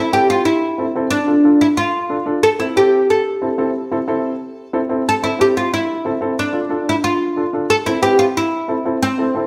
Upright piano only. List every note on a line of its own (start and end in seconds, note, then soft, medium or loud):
0.13 0.35 C4 medium
0.13 0.36 E4 medium
0.13 0.36 A4 medium
0.78 0.84 C4 medium
0.78 0.84 E4 medium
0.78 0.84 A4 medium
0.96 1.06 C4 medium
0.96 1.07 E4 medium
0.96 1.07 A4 medium
1.27 1.33 D4 medium
1.27 1.33 F4 medium
1.27 1.33 A4 medium
1.44 1.67 D4 medium
1.44 1.67 F4 medium
1.44 1.67 A4 medium
2.09 2.15 D4 medium
2.09 2.15 F4 medium
2.09 2.15 A4 medium
2.26 2.37 D4 medium
2.26 2.38 F4 medium
2.26 2.38 A4 medium
2.59 2.65 C4 medium
2.59 2.65 E4 medium
2.59 2.65 A4 medium
2.76 2.99 C4 medium
2.76 2.99 E4 medium
2.76 2.99 A4 medium
3.42 3.47 C4 medium
3.42 3.47 E4 medium
3.42 3.48 A4 medium
3.58 3.69 C4 medium
3.58 3.70 E4 medium
3.58 3.70 A4 medium
3.92 3.97 C4 medium
3.92 3.97 E4 medium
3.92 3.97 A4 medium
4.08 4.30 C4 medium
4.08 4.30 E4 medium
4.08 4.31 A4 medium
4.73 4.79 C4 medium
4.73 4.79 E4 medium
4.73 4.79 A4 medium
4.89 5.01 C4 medium
4.89 5.01 E4 medium
4.89 5.01 A4 medium
5.22 5.28 C4 medium
5.22 5.28 E4 soft
5.22 5.29 A4 medium
5.39 5.62 C4 medium
5.39 5.62 E4 medium
5.39 5.63 A4 medium
6.05 6.11 C4 medium
6.05 6.11 E4 medium
6.05 6.11 A4 medium
6.21 6.33 C4 medium
6.21 6.33 E4 medium
6.21 6.33 A4 medium
6.53 6.59 D4 medium
6.53 6.59 F4 medium
6.53 6.60 A4 medium
6.69 6.93 D4 medium
6.69 6.93 F4 medium
6.69 6.93 A4 medium
7.36 7.42 D4 medium
7.36 7.42 F4 medium
7.36 7.43 A4 medium
7.53 7.65 D4 medium
7.53 7.65 F4 medium
7.53 7.65 A4 medium
7.86 7.92 C4 medium
7.86 7.92 E4 medium
7.86 7.92 A4 medium
8.02 8.25 C4 medium
8.02 8.26 E4 medium
8.02 8.25 B4 medium
8.68 8.74 C4 medium
8.68 8.74 E4 medium
8.68 8.74 A4 medium
8.85 8.96 C4 medium
8.85 8.97 E4 medium
8.85 8.97 A4 medium
9.18 9.24 C4 medium
9.18 9.24 E4 medium
9.18 9.24 A4 medium
9.35 9.47 C4 medium
9.35 9.47 E4 medium
9.35 9.47 A4 medium